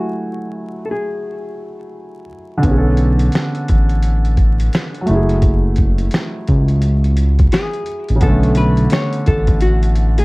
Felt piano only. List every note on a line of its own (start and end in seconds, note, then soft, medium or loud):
0.00 2.22 F#3 medium
0.00 2.24 A3 medium
0.00 2.26 E4 medium
0.00 2.32 G#5 medium
2.58 5.01 D3 medium
2.62 5.03 B3 medium
2.66 5.05 C#4 medium
2.71 2.76 G#4 medium
2.77 5.11 A4 medium
5.01 7.80 F#3 medium
5.06 7.82 A3 medium
5.10 7.84 E4 medium
5.14 7.86 G#4 medium
8.16 8.27 C#3 medium
8.20 10.25 D3 medium
8.20 10.25 B3 medium
8.25 10.25 C#4 medium
8.29 10.25 A3 medium